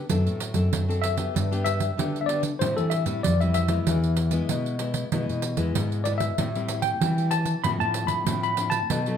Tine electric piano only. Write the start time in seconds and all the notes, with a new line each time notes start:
Already playing: B4
1.02 E5
1.64 E5
2.21 E5
2.26 D5
2.59 C5
2.77 A4
2.90 E5
3.23 D5
3.41 E5
3.54 E5
6.04 D5
6.18 E5
6.82 G5
7.31 A5
7.64 B5
7.80 A5
8.07 B5
8.43 B5
8.70 A5